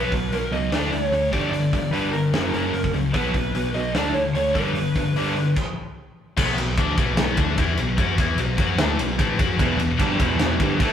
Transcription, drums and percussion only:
0.12 kick medium
0.12 open hi-hat medium
0.32 open hi-hat medium
0.52 open hi-hat soft
0.72 snare loud
0.72 open hi-hat medium
0.93 open hi-hat medium
1.13 open hi-hat medium
1.33 kick medium
1.33 open hi-hat medium
1.53 open hi-hat medium
1.73 kick medium
1.73 open hi-hat medium
1.94 open hi-hat medium
2.13 open hi-hat medium
2.34 snare loud
2.34 open hi-hat medium
2.54 open hi-hat medium
2.74 open hi-hat medium
2.84 kick medium
2.94 open hi-hat medium
3.14 kick loud
3.14 open hi-hat medium
3.34 kick medium
3.34 open hi-hat medium
3.55 open hi-hat medium
3.75 open hi-hat medium
3.95 snare loud
3.95 open hi-hat medium
4.14 open hi-hat soft
4.35 open hi-hat medium
4.55 kick medium
4.55 open hi-hat soft
4.75 open hi-hat medium
4.95 kick medium
4.95 open hi-hat medium
5.16 open hi-hat medium
5.26 snare soft
5.36 open hi-hat soft
5.56 kick loud
5.56 crash medium
6.37 kick loud
6.37 crash loud
6.58 ride medium
6.78 kick loud
6.78 ride medium
6.98 kick loud
6.98 ride medium
7.17 snare loud
7.17 ride loud
7.37 kick loud
7.37 ride medium
7.58 kick loud
7.58 ride medium
7.77 ride medium
7.98 kick loud
7.98 ride medium
8.18 kick loud
8.18 ride medium
8.38 ride loud
8.58 kick loud
8.58 ride medium
8.78 snare loud
8.78 ride loud
8.99 ride medium
9.19 kick loud
9.19 ride loud
9.39 kick loud
9.39 ride medium
9.59 kick loud
9.59 ride loud
9.79 ride medium
10.00 kick loud
10.00 ride loud
10.20 kick loud
10.20 ride medium
10.39 snare loud
10.39 ride loud
10.60 kick loud
10.60 ride medium
10.80 kick loud
10.80 ride medium

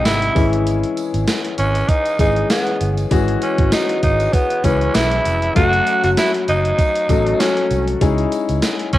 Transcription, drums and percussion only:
0.05 snare loud
0.05 closed hi-hat medium
0.05 tambourine medium
0.22 closed hi-hat medium
0.36 kick loud
0.36 open hi-hat medium
0.36 tambourine medium
0.53 closed hi-hat medium
0.67 closed hi-hat medium
0.67 tambourine soft
0.83 closed hi-hat medium
0.97 closed hi-hat medium
0.97 tambourine soft
1.14 closed hi-hat medium
1.14 tambourine soft
1.27 snare loud
1.27 closed hi-hat loud
1.27 tambourine medium
1.45 closed hi-hat medium
1.58 closed hi-hat medium
1.58 tambourine soft
1.75 closed hi-hat medium
1.75 tambourine soft
1.89 kick medium
1.89 closed hi-hat medium
1.89 tambourine soft
2.05 closed hi-hat medium
2.05 tambourine soft
2.19 kick loud
2.19 closed hi-hat medium
2.19 tambourine medium
2.36 closed hi-hat medium
2.50 snare loud
2.50 closed hi-hat medium
2.50 tambourine medium
2.67 closed hi-hat medium
2.81 closed hi-hat medium
2.81 tambourine soft
2.97 closed hi-hat medium
2.97 tambourine soft
3.11 kick loud
3.11 closed hi-hat medium
3.11 tambourine medium
3.28 closed hi-hat medium
3.42 closed hi-hat medium
3.42 tambourine soft
3.58 kick medium
3.58 closed hi-hat medium
3.72 snare loud
3.72 closed hi-hat loud
3.72 tambourine medium
3.89 closed hi-hat medium
4.03 kick medium
4.03 closed hi-hat medium
4.03 tambourine soft
4.20 closed hi-hat medium
4.20 tambourine soft
4.33 kick medium
4.33 closed hi-hat medium
4.33 tambourine soft
4.50 closed hi-hat medium
4.64 kick medium
4.64 closed hi-hat medium
4.64 tambourine medium
4.81 closed hi-hat medium
4.94 snare loud
4.94 closed hi-hat medium
4.94 tambourine medium
5.11 closed hi-hat medium
5.25 closed hi-hat medium
5.25 tambourine medium
5.42 closed hi-hat medium
5.56 kick loud
5.56 closed hi-hat loud
5.56 tambourine soft
5.73 closed hi-hat medium
5.87 closed hi-hat medium
5.87 tambourine soft
6.04 closed hi-hat medium
6.04 tambourine soft
6.17 snare loud
6.17 closed hi-hat loud
6.17 tambourine medium
6.34 closed hi-hat medium
6.48 closed hi-hat medium
6.48 tambourine soft
6.65 closed hi-hat medium
6.79 kick loud
6.79 closed hi-hat medium
6.79 tambourine soft
6.96 closed hi-hat medium
6.96 tambourine soft
7.09 kick loud
7.09 closed hi-hat medium
7.09 tambourine soft
7.27 closed hi-hat medium
7.40 snare loud
7.40 closed hi-hat medium
7.40 tambourine medium
7.57 closed hi-hat medium
7.71 closed hi-hat medium
7.71 tambourine medium
7.88 closed hi-hat medium
8.01 kick loud
8.01 closed hi-hat loud
8.01 tambourine medium
8.18 closed hi-hat medium
8.32 closed hi-hat medium
8.32 tambourine soft
8.49 closed hi-hat medium
8.49 tambourine soft
8.62 snare loud
8.62 closed hi-hat loud
8.62 tambourine medium
8.79 closed hi-hat medium
8.93 kick medium
8.93 closed hi-hat medium
8.93 tambourine soft

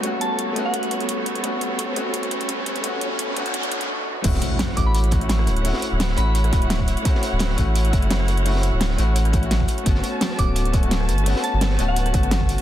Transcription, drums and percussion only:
0.03 closed hi-hat medium
0.21 closed hi-hat medium
0.39 closed hi-hat medium
0.56 closed hi-hat medium
0.74 closed hi-hat medium
0.83 closed hi-hat soft
0.91 closed hi-hat medium
1.00 closed hi-hat soft
1.09 closed hi-hat medium
1.26 closed hi-hat medium
1.35 closed hi-hat soft
1.44 closed hi-hat medium
1.61 closed hi-hat medium
1.79 closed hi-hat loud
1.96 closed hi-hat medium
2.14 closed hi-hat medium
2.23 closed hi-hat soft
2.31 closed hi-hat medium
2.41 closed hi-hat soft
2.49 closed hi-hat loud
2.66 closed hi-hat medium
2.76 closed hi-hat soft
2.84 closed hi-hat loud
3.01 closed hi-hat medium
3.19 closed hi-hat loud
3.37 closed hi-hat medium
3.46 closed hi-hat soft
3.54 closed hi-hat loud
3.63 closed hi-hat soft
3.72 closed hi-hat medium
3.81 closed hi-hat soft
4.24 kick loud
4.24 closed hi-hat medium
4.24 closed hi-hat loud
4.24 crash loud
4.34 snare soft
4.42 closed hi-hat medium
4.59 snare loud
4.59 closed hi-hat loud
4.59 closed hi-hat medium
4.69 snare soft
4.77 kick medium
4.77 closed hi-hat medium
4.95 closed hi-hat medium
4.95 closed hi-hat loud
5.04 closed hi-hat soft
5.11 kick loud
5.11 closed hi-hat medium
5.21 closed hi-hat soft
5.29 snare loud
5.29 closed hi-hat loud
5.29 closed hi-hat medium
5.39 cross-stick medium
5.47 cross-stick soft
5.47 closed hi-hat medium
5.57 closed hi-hat soft
5.65 closed hi-hat loud
5.65 open hi-hat medium
5.73 snare soft
5.82 closed hi-hat medium
6.00 snare loud
6.00 closed hi-hat medium
6.00 closed hi-hat loud
6.08 snare medium
6.17 closed hi-hat medium
6.35 closed hi-hat medium
6.44 cross-stick soft
6.44 closed hi-hat soft
6.53 kick loud
6.53 closed hi-hat medium
6.62 closed hi-hat soft
6.70 snare loud
6.70 closed hi-hat loud
6.70 closed hi-hat medium
6.80 kick medium
6.88 closed hi-hat medium
6.97 closed hi-hat soft
7.05 kick loud
7.05 closed hi-hat medium
7.15 snare soft
7.23 closed hi-hat medium
7.39 snare loud
7.39 closed hi-hat medium
7.50 snare soft
7.58 kick medium
7.58 closed hi-hat medium
7.76 closed hi-hat medium
7.76 closed hi-hat loud
7.85 closed hi-hat soft
7.93 kick loud
7.93 closed hi-hat medium
8.02 closed hi-hat soft
8.11 snare loud
8.11 closed hi-hat medium
8.20 cross-stick medium
8.28 cross-stick soft
8.28 closed hi-hat medium
8.37 closed hi-hat soft
8.46 closed hi-hat medium
8.46 open hi-hat medium
8.55 snare medium
8.63 closed hi-hat medium
8.81 snare loud
8.81 closed hi-hat medium
8.90 snare medium
8.98 closed hi-hat medium
9.16 closed hi-hat loud
9.16 closed hi-hat medium
9.25 cross-stick soft
9.25 closed hi-hat soft
9.33 kick loud
9.33 closed hi-hat medium
9.43 closed hi-hat soft
9.51 snare loud
9.51 closed hi-hat medium
9.60 kick medium
9.68 closed hi-hat medium
9.78 closed hi-hat soft
9.86 kick loud
9.86 closed hi-hat medium
9.95 snare soft
10.04 closed hi-hat medium
10.21 snare loud
10.21 closed hi-hat medium
10.30 snare soft
10.39 kick medium
10.39 closed hi-hat medium
10.56 closed hi-hat medium
10.65 closed hi-hat soft
10.73 kick loud
10.73 closed hi-hat medium
10.83 closed hi-hat soft
10.91 snare loud
10.91 closed hi-hat medium
11.01 cross-stick medium
11.09 cross-stick soft
11.09 closed hi-hat medium
11.18 closed hi-hat soft
11.26 closed hi-hat medium
11.26 open hi-hat medium
11.36 snare medium
11.44 closed hi-hat medium
11.61 snare loud
11.61 closed hi-hat medium
11.70 snare medium
11.79 closed hi-hat medium
11.96 closed hi-hat medium
12.06 cross-stick soft
12.06 closed hi-hat soft
12.14 kick loud
12.14 closed hi-hat medium
12.23 closed hi-hat soft
12.31 snare loud
12.31 closed hi-hat medium
12.41 kick medium
12.49 closed hi-hat medium
12.58 closed hi-hat soft

